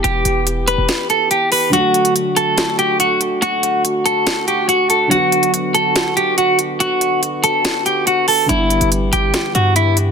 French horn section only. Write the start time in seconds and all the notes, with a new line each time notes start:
Already playing: E3 B3 G4
1.73 D3 A3 F#4
5.11 D3 B3
8.49 E3 G4